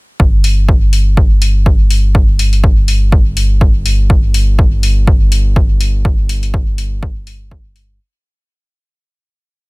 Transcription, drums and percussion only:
0.20 kick
0.44 open hi-hat
0.69 kick
0.93 open hi-hat
1.17 kick
1.42 open hi-hat
1.66 kick
1.91 open hi-hat
2.15 kick
2.39 open hi-hat
2.53 open hi-hat
2.64 kick
2.88 open hi-hat
3.12 kick
3.37 open hi-hat
3.61 kick
3.86 open hi-hat
4.10 kick
4.34 open hi-hat
4.59 kick
4.83 open hi-hat
5.07 kick
5.32 open hi-hat
5.56 kick
5.81 open hi-hat
6.05 kick
6.29 open hi-hat
6.43 open hi-hat
6.54 kick
6.78 open hi-hat
7.03 kick
7.27 open hi-hat
7.51 kick
7.76 open hi-hat

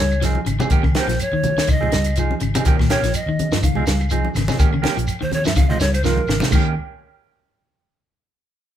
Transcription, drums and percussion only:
0.11 claves, shekere
0.22 snare, closed hi-hat, shekere
0.35 high conga
0.46 closed hi-hat, claves, shekere
0.60 high conga, shekere
0.70 kick, closed hi-hat, low conga, shekere
0.84 kick, claves
0.95 snare, closed hi-hat, high conga
1.09 snare, closed hi-hat, shekere
1.19 closed hi-hat, claves, shekere
1.43 closed hi-hat, high conga, low conga, shekere
1.58 snare, high conga, shekere
1.67 kick, closed hi-hat, claves, shekere
1.83 low conga
1.92 snare, closed hi-hat, shekere
2.04 closed hi-hat, claves, shekere
2.16 closed hi-hat, shekere
2.31 high conga
2.40 closed hi-hat, claves, shekere
2.55 closed hi-hat, high conga, shekere
2.65 kick, closed hi-hat, low conga, shekere
2.79 kick, snare, claves
2.90 snare, closed hi-hat, high conga
3.03 snare, closed hi-hat, shekere
3.14 closed hi-hat, claves, shekere
3.39 closed hi-hat, high conga, shekere
3.52 snare, high conga, shekere
3.63 kick, closed hi-hat, claves, shekere
3.75 low conga
3.86 snare, closed hi-hat, shekere
4.00 claves, shekere
4.10 closed hi-hat, shekere
4.25 high conga
4.35 snare, closed hi-hat, high conga, claves, shekere
4.48 snare, high conga, shekere
4.59 kick, closed hi-hat, low conga, shekere
4.73 claves
4.84 snare, closed hi-hat, high conga
4.97 closed hi-hat, shekere
5.07 closed hi-hat, claves, shekere
5.31 closed hi-hat, high conga, shekere
5.45 snare, shekere
5.55 kick, closed hi-hat, high conga, claves, shekere
5.70 low conga
5.80 snare, closed hi-hat, shekere
5.93 closed hi-hat, claves, shekere
6.04 snare, shekere
6.17 high conga
6.27 snare, claves, shekere
6.40 snare, high conga, shekere
6.51 kick, crash, low conga, claves, shekere

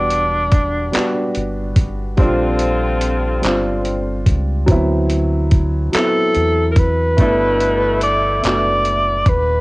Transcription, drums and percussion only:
0.10 closed hi-hat
0.52 kick, closed hi-hat
0.93 clap, closed hi-hat
1.35 closed hi-hat
1.76 kick, closed hi-hat
2.17 kick, closed hi-hat
2.59 closed hi-hat
3.01 closed hi-hat
3.43 clap, closed hi-hat
3.85 closed hi-hat
4.26 kick, closed hi-hat
4.68 kick, closed hi-hat
5.10 closed hi-hat
5.51 kick, closed hi-hat
5.93 clap, closed hi-hat
6.35 closed hi-hat
6.76 kick, closed hi-hat
7.18 kick, closed hi-hat
7.60 closed hi-hat
8.01 closed hi-hat
8.44 clap, closed hi-hat
8.85 closed hi-hat
9.26 kick, closed hi-hat

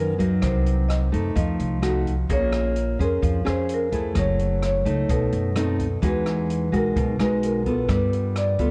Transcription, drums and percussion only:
0.19 kick, closed hi-hat
0.42 kick, cross-stick, closed hi-hat
0.66 closed hi-hat
0.90 cross-stick, closed hi-hat
1.13 kick, closed hi-hat
1.36 kick, closed hi-hat
1.59 closed hi-hat
1.83 cross-stick, closed hi-hat
2.06 kick, closed hi-hat
2.30 kick, closed hi-hat
2.53 cross-stick, closed hi-hat
2.76 closed hi-hat
3.00 kick, closed hi-hat
3.23 kick, closed hi-hat
3.46 cross-stick, closed hi-hat
3.69 closed hi-hat
3.92 kick, closed hi-hat
4.15 kick, cross-stick, closed hi-hat
4.39 closed hi-hat
4.62 cross-stick, closed hi-hat
4.86 kick, closed hi-hat
5.09 kick, closed hi-hat
5.32 closed hi-hat
5.56 cross-stick, closed hi-hat
5.79 kick, closed hi-hat
6.03 kick, closed hi-hat
6.26 cross-stick, closed hi-hat
6.50 closed hi-hat
6.73 kick, closed hi-hat
6.96 kick, closed hi-hat
7.19 cross-stick, closed hi-hat
7.43 closed hi-hat
7.66 kick, closed hi-hat
7.89 kick, cross-stick, closed hi-hat
8.13 closed hi-hat
8.36 cross-stick, closed hi-hat
8.59 kick, closed hi-hat

